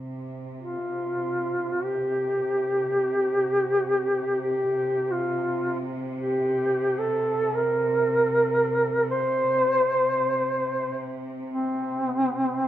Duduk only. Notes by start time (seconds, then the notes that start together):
0.60 F4
1.83 G4
4.40 G4
5.12 F4
6.18 G4
6.98 A4
7.54 A#4
9.10 C5
11.53 C4